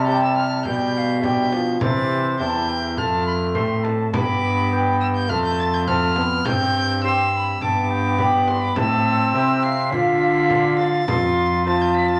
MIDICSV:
0, 0, Header, 1, 7, 480
1, 0, Start_track
1, 0, Tempo, 579710
1, 1502, Time_signature, 4, 2, 24, 8
1, 10099, End_track
2, 0, Start_track
2, 0, Title_t, "Violin"
2, 0, Program_c, 0, 40
2, 58, Note_on_c, 0, 91, 99
2, 176, Note_off_c, 0, 91, 0
2, 182, Note_on_c, 0, 88, 92
2, 297, Note_off_c, 0, 88, 0
2, 302, Note_on_c, 0, 89, 96
2, 534, Note_off_c, 0, 89, 0
2, 539, Note_on_c, 0, 91, 99
2, 1012, Note_off_c, 0, 91, 0
2, 1025, Note_on_c, 0, 91, 101
2, 1494, Note_off_c, 0, 91, 0
2, 1507, Note_on_c, 0, 93, 113
2, 1975, Note_off_c, 0, 93, 0
2, 1985, Note_on_c, 0, 91, 116
2, 2469, Note_on_c, 0, 89, 94
2, 2481, Note_off_c, 0, 91, 0
2, 3188, Note_off_c, 0, 89, 0
2, 3428, Note_on_c, 0, 86, 106
2, 4113, Note_off_c, 0, 86, 0
2, 4144, Note_on_c, 0, 88, 97
2, 4192, Note_off_c, 0, 88, 0
2, 4267, Note_on_c, 0, 91, 104
2, 4386, Note_on_c, 0, 89, 116
2, 4398, Note_off_c, 0, 91, 0
2, 4505, Note_off_c, 0, 89, 0
2, 4512, Note_on_c, 0, 91, 102
2, 4635, Note_on_c, 0, 93, 117
2, 4648, Note_off_c, 0, 91, 0
2, 4754, Note_on_c, 0, 91, 104
2, 4767, Note_off_c, 0, 93, 0
2, 4865, Note_on_c, 0, 89, 112
2, 4877, Note_off_c, 0, 91, 0
2, 5338, Note_on_c, 0, 91, 127
2, 5351, Note_off_c, 0, 89, 0
2, 5820, Note_off_c, 0, 91, 0
2, 5828, Note_on_c, 0, 88, 121
2, 6312, Note_on_c, 0, 86, 103
2, 6324, Note_off_c, 0, 88, 0
2, 7024, Note_on_c, 0, 84, 102
2, 7037, Note_off_c, 0, 86, 0
2, 7141, Note_off_c, 0, 84, 0
2, 7151, Note_on_c, 0, 86, 97
2, 7260, Note_off_c, 0, 86, 0
2, 7265, Note_on_c, 0, 88, 117
2, 7977, Note_on_c, 0, 96, 116
2, 7990, Note_off_c, 0, 88, 0
2, 8208, Note_off_c, 0, 96, 0
2, 8213, Note_on_c, 0, 95, 123
2, 8919, Note_off_c, 0, 95, 0
2, 8934, Note_on_c, 0, 93, 127
2, 9642, Note_off_c, 0, 93, 0
2, 9660, Note_on_c, 0, 93, 116
2, 9783, Note_on_c, 0, 91, 110
2, 9795, Note_off_c, 0, 93, 0
2, 9901, Note_off_c, 0, 91, 0
2, 9905, Note_on_c, 0, 95, 111
2, 10020, Note_off_c, 0, 95, 0
2, 10024, Note_on_c, 0, 93, 114
2, 10099, Note_off_c, 0, 93, 0
2, 10099, End_track
3, 0, Start_track
3, 0, Title_t, "Recorder"
3, 0, Program_c, 1, 74
3, 0, Note_on_c, 1, 81, 99
3, 544, Note_on_c, 1, 79, 82
3, 556, Note_off_c, 1, 81, 0
3, 782, Note_off_c, 1, 79, 0
3, 782, Note_on_c, 1, 79, 74
3, 811, Note_on_c, 1, 77, 80
3, 819, Note_off_c, 1, 79, 0
3, 1014, Note_on_c, 1, 76, 74
3, 1026, Note_off_c, 1, 77, 0
3, 1258, Note_off_c, 1, 76, 0
3, 1263, Note_on_c, 1, 74, 75
3, 1317, Note_off_c, 1, 74, 0
3, 1503, Note_on_c, 1, 72, 77
3, 1987, Note_on_c, 1, 81, 87
3, 2000, Note_off_c, 1, 72, 0
3, 2227, Note_on_c, 1, 79, 74
3, 2240, Note_off_c, 1, 81, 0
3, 2458, Note_off_c, 1, 79, 0
3, 2463, Note_on_c, 1, 81, 93
3, 2698, Note_off_c, 1, 81, 0
3, 2703, Note_on_c, 1, 83, 79
3, 2757, Note_off_c, 1, 83, 0
3, 2935, Note_on_c, 1, 84, 80
3, 3177, Note_on_c, 1, 81, 75
3, 3189, Note_off_c, 1, 84, 0
3, 3421, Note_off_c, 1, 81, 0
3, 3426, Note_on_c, 1, 83, 86
3, 3896, Note_off_c, 1, 83, 0
3, 3908, Note_on_c, 1, 79, 93
3, 4377, Note_off_c, 1, 79, 0
3, 4396, Note_on_c, 1, 81, 102
3, 4861, Note_off_c, 1, 81, 0
3, 4874, Note_on_c, 1, 81, 84
3, 5175, Note_off_c, 1, 81, 0
3, 5350, Note_on_c, 1, 79, 100
3, 5793, Note_off_c, 1, 79, 0
3, 5829, Note_on_c, 1, 84, 100
3, 6067, Note_off_c, 1, 84, 0
3, 6067, Note_on_c, 1, 84, 82
3, 6098, Note_on_c, 1, 83, 90
3, 6106, Note_off_c, 1, 84, 0
3, 6303, Note_off_c, 1, 83, 0
3, 6315, Note_on_c, 1, 81, 110
3, 6545, Note_on_c, 1, 79, 96
3, 6557, Note_off_c, 1, 81, 0
3, 6780, Note_off_c, 1, 79, 0
3, 6785, Note_on_c, 1, 83, 97
3, 7266, Note_on_c, 1, 81, 101
3, 7278, Note_off_c, 1, 83, 0
3, 7737, Note_off_c, 1, 81, 0
3, 7742, Note_on_c, 1, 79, 86
3, 7975, Note_off_c, 1, 79, 0
3, 7988, Note_on_c, 1, 77, 107
3, 9157, Note_off_c, 1, 77, 0
3, 9182, Note_on_c, 1, 84, 106
3, 9667, Note_on_c, 1, 81, 88
3, 9680, Note_off_c, 1, 84, 0
3, 10099, Note_off_c, 1, 81, 0
3, 10099, End_track
4, 0, Start_track
4, 0, Title_t, "Lute"
4, 0, Program_c, 2, 24
4, 0, Note_on_c, 2, 48, 62
4, 60, Note_on_c, 2, 64, 61
4, 65, Note_on_c, 2, 67, 58
4, 67, Note_on_c, 2, 72, 63
4, 506, Note_off_c, 2, 48, 0
4, 508, Note_off_c, 2, 64, 0
4, 509, Note_off_c, 2, 67, 0
4, 511, Note_off_c, 2, 72, 0
4, 539, Note_on_c, 2, 47, 53
4, 1021, Note_on_c, 2, 62, 52
4, 1025, Note_on_c, 2, 67, 61
4, 1028, Note_on_c, 2, 74, 62
4, 1468, Note_off_c, 2, 47, 0
4, 1469, Note_off_c, 2, 62, 0
4, 1470, Note_off_c, 2, 67, 0
4, 1472, Note_off_c, 2, 74, 0
4, 1503, Note_on_c, 2, 48, 60
4, 1949, Note_off_c, 2, 48, 0
4, 1984, Note_on_c, 2, 40, 65
4, 1987, Note_on_c, 2, 64, 65
4, 1990, Note_on_c, 2, 67, 63
4, 1992, Note_on_c, 2, 72, 68
4, 2430, Note_off_c, 2, 40, 0
4, 2431, Note_off_c, 2, 64, 0
4, 2433, Note_off_c, 2, 67, 0
4, 2433, Note_off_c, 2, 72, 0
4, 2457, Note_on_c, 2, 41, 59
4, 2908, Note_off_c, 2, 41, 0
4, 2939, Note_on_c, 2, 45, 64
4, 2940, Note_on_c, 2, 60, 61
4, 2943, Note_on_c, 2, 69, 55
4, 2948, Note_on_c, 2, 72, 65
4, 3388, Note_off_c, 2, 60, 0
4, 3389, Note_off_c, 2, 45, 0
4, 3391, Note_off_c, 2, 69, 0
4, 3392, Note_off_c, 2, 72, 0
4, 3422, Note_on_c, 2, 43, 68
4, 3908, Note_on_c, 2, 67, 61
4, 3914, Note_on_c, 2, 71, 70
4, 4350, Note_off_c, 2, 43, 0
4, 4353, Note_off_c, 2, 67, 0
4, 4356, Note_off_c, 2, 71, 0
4, 4391, Note_on_c, 2, 41, 60
4, 4868, Note_on_c, 2, 60, 62
4, 4872, Note_on_c, 2, 69, 60
4, 4877, Note_on_c, 2, 72, 72
4, 5312, Note_off_c, 2, 60, 0
4, 5314, Note_off_c, 2, 41, 0
4, 5314, Note_off_c, 2, 69, 0
4, 5315, Note_off_c, 2, 72, 0
4, 5344, Note_on_c, 2, 43, 72
4, 5826, Note_on_c, 2, 60, 68
4, 5830, Note_on_c, 2, 67, 68
4, 5834, Note_on_c, 2, 72, 71
4, 6268, Note_off_c, 2, 43, 0
4, 6269, Note_off_c, 2, 60, 0
4, 6272, Note_off_c, 2, 67, 0
4, 6273, Note_off_c, 2, 72, 0
4, 6299, Note_on_c, 2, 43, 62
4, 6776, Note_on_c, 2, 59, 61
4, 6781, Note_on_c, 2, 67, 65
4, 6783, Note_on_c, 2, 74, 70
4, 7224, Note_off_c, 2, 43, 0
4, 7224, Note_off_c, 2, 59, 0
4, 7225, Note_off_c, 2, 67, 0
4, 7227, Note_off_c, 2, 74, 0
4, 7257, Note_on_c, 2, 45, 71
4, 7704, Note_off_c, 2, 45, 0
4, 7735, Note_on_c, 2, 48, 76
4, 7738, Note_on_c, 2, 57, 68
4, 7741, Note_on_c, 2, 64, 68
4, 7744, Note_on_c, 2, 72, 75
4, 8183, Note_off_c, 2, 48, 0
4, 8184, Note_off_c, 2, 57, 0
4, 8184, Note_off_c, 2, 64, 0
4, 8187, Note_off_c, 2, 72, 0
4, 8214, Note_on_c, 2, 50, 70
4, 8689, Note_on_c, 2, 57, 63
4, 8695, Note_on_c, 2, 65, 62
4, 8699, Note_on_c, 2, 74, 63
4, 9139, Note_off_c, 2, 57, 0
4, 9141, Note_off_c, 2, 50, 0
4, 9142, Note_off_c, 2, 65, 0
4, 9144, Note_off_c, 2, 74, 0
4, 9173, Note_on_c, 2, 41, 68
4, 9652, Note_on_c, 2, 57, 67
4, 9655, Note_on_c, 2, 69, 72
4, 9662, Note_on_c, 2, 72, 73
4, 10099, Note_off_c, 2, 41, 0
4, 10099, Note_off_c, 2, 57, 0
4, 10099, Note_off_c, 2, 69, 0
4, 10099, Note_off_c, 2, 72, 0
4, 10099, End_track
5, 0, Start_track
5, 0, Title_t, "Trombone"
5, 0, Program_c, 3, 57
5, 0, Note_on_c, 3, 55, 82
5, 506, Note_off_c, 3, 55, 0
5, 545, Note_on_c, 3, 55, 74
5, 1011, Note_off_c, 3, 55, 0
5, 1016, Note_on_c, 3, 55, 72
5, 1263, Note_on_c, 3, 53, 82
5, 1276, Note_off_c, 3, 55, 0
5, 1500, Note_on_c, 3, 52, 79
5, 1512, Note_off_c, 3, 53, 0
5, 1976, Note_off_c, 3, 52, 0
5, 1981, Note_on_c, 3, 52, 70
5, 2469, Note_on_c, 3, 57, 79
5, 2482, Note_off_c, 3, 52, 0
5, 3421, Note_off_c, 3, 57, 0
5, 3426, Note_on_c, 3, 59, 80
5, 4392, Note_on_c, 3, 57, 81
5, 4404, Note_off_c, 3, 59, 0
5, 4869, Note_off_c, 3, 57, 0
5, 4876, Note_on_c, 3, 57, 76
5, 5108, Note_on_c, 3, 59, 89
5, 5121, Note_off_c, 3, 57, 0
5, 5355, Note_on_c, 3, 60, 81
5, 5367, Note_off_c, 3, 59, 0
5, 6077, Note_off_c, 3, 60, 0
5, 6308, Note_on_c, 3, 59, 88
5, 7228, Note_off_c, 3, 59, 0
5, 7256, Note_on_c, 3, 60, 91
5, 8214, Note_on_c, 3, 65, 93
5, 8227, Note_off_c, 3, 60, 0
5, 9165, Note_off_c, 3, 65, 0
5, 9170, Note_on_c, 3, 65, 81
5, 9644, Note_off_c, 3, 65, 0
5, 9649, Note_on_c, 3, 65, 80
5, 10099, Note_off_c, 3, 65, 0
5, 10099, End_track
6, 0, Start_track
6, 0, Title_t, "Cello"
6, 0, Program_c, 4, 42
6, 0, Note_on_c, 4, 48, 87
6, 543, Note_on_c, 4, 47, 81
6, 555, Note_off_c, 4, 48, 0
6, 1503, Note_off_c, 4, 47, 0
6, 1507, Note_on_c, 4, 48, 84
6, 1982, Note_on_c, 4, 40, 72
6, 1995, Note_off_c, 4, 48, 0
6, 2467, Note_on_c, 4, 41, 84
6, 2480, Note_off_c, 4, 40, 0
6, 2945, Note_on_c, 4, 45, 80
6, 2957, Note_off_c, 4, 41, 0
6, 3425, Note_off_c, 4, 45, 0
6, 3429, Note_on_c, 4, 43, 92
6, 4387, Note_on_c, 4, 41, 87
6, 4400, Note_off_c, 4, 43, 0
6, 5339, Note_off_c, 4, 41, 0
6, 5344, Note_on_c, 4, 43, 86
6, 6282, Note_off_c, 4, 43, 0
6, 6307, Note_on_c, 4, 43, 90
6, 7242, Note_off_c, 4, 43, 0
6, 7257, Note_on_c, 4, 45, 95
6, 7735, Note_on_c, 4, 48, 82
6, 7747, Note_off_c, 4, 45, 0
6, 8208, Note_on_c, 4, 50, 95
6, 8220, Note_off_c, 4, 48, 0
6, 9171, Note_off_c, 4, 50, 0
6, 9175, Note_on_c, 4, 41, 95
6, 10099, Note_off_c, 4, 41, 0
6, 10099, End_track
7, 0, Start_track
7, 0, Title_t, "Frame drum"
7, 540, Note_on_c, 9, 64, 52
7, 623, Note_off_c, 9, 64, 0
7, 1021, Note_on_c, 9, 64, 60
7, 1104, Note_off_c, 9, 64, 0
7, 1263, Note_on_c, 9, 64, 54
7, 1345, Note_off_c, 9, 64, 0
7, 1499, Note_on_c, 9, 64, 89
7, 1582, Note_off_c, 9, 64, 0
7, 2462, Note_on_c, 9, 64, 53
7, 2545, Note_off_c, 9, 64, 0
7, 2938, Note_on_c, 9, 64, 58
7, 3021, Note_off_c, 9, 64, 0
7, 3186, Note_on_c, 9, 64, 50
7, 3269, Note_off_c, 9, 64, 0
7, 3425, Note_on_c, 9, 64, 85
7, 3508, Note_off_c, 9, 64, 0
7, 4386, Note_on_c, 9, 64, 52
7, 4468, Note_off_c, 9, 64, 0
7, 4864, Note_on_c, 9, 64, 56
7, 4947, Note_off_c, 9, 64, 0
7, 5102, Note_on_c, 9, 64, 54
7, 5184, Note_off_c, 9, 64, 0
7, 5345, Note_on_c, 9, 64, 82
7, 5428, Note_off_c, 9, 64, 0
7, 6302, Note_on_c, 9, 64, 54
7, 6385, Note_off_c, 9, 64, 0
7, 6777, Note_on_c, 9, 64, 63
7, 6860, Note_off_c, 9, 64, 0
7, 7019, Note_on_c, 9, 64, 58
7, 7102, Note_off_c, 9, 64, 0
7, 7254, Note_on_c, 9, 64, 85
7, 7337, Note_off_c, 9, 64, 0
7, 8217, Note_on_c, 9, 64, 53
7, 8300, Note_off_c, 9, 64, 0
7, 8693, Note_on_c, 9, 64, 58
7, 8776, Note_off_c, 9, 64, 0
7, 8936, Note_on_c, 9, 64, 50
7, 9019, Note_off_c, 9, 64, 0
7, 9174, Note_on_c, 9, 64, 89
7, 9257, Note_off_c, 9, 64, 0
7, 10099, End_track
0, 0, End_of_file